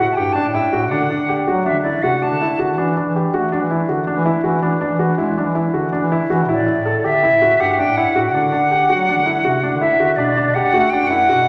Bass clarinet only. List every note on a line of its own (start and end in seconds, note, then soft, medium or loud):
0.00 0.11 A2 medium
0.17 0.31 G2 medium
0.45 0.60 A2 medium
0.73 0.93 A2 medium
0.92 1.13 D3 medium
1.19 1.41 D3 medium
1.47 1.75 F#3 medium
1.74 1.96 D3 medium
2.02 2.17 C3 medium
2.30 2.45 D3 medium
2.58 2.79 D3 medium
2.77 2.99 E3 medium
3.05 3.27 E3 medium
3.33 3.62 A3 medium
3.60 3.82 E3 medium
3.88 4.02 D3 medium
4.16 4.30 E3 medium
4.43 4.58 E3 medium
4.62 4.84 E3 medium
4.89 5.11 E3 medium
5.17 5.46 G#3 medium
5.45 5.67 E3 medium
5.73 5.87 D3 medium
6.01 6.16 E3 medium
6.29 6.49 E3 medium
6.48 6.70 A2 medium
6.76 6.97 A2 medium
7.04 7.33 D3 medium
7.31 7.53 A2 medium
7.59 7.74 G2 medium
7.87 8.02 A2 medium
8.15 8.36 A2 medium
8.34 8.55 D3 medium
8.62 8.83 D3 medium
8.90 9.19 F#3 medium
9.18 9.39 D3 medium
9.45 9.59 C3 medium
9.72 9.87 D3 medium
10.00 10.14 D3 medium
10.17 10.39 B2 medium
10.46 10.61 B2 medium
10.74 10.88 A3 medium
11.02 11.23 F#2 medium
11.29 11.48 B2 medium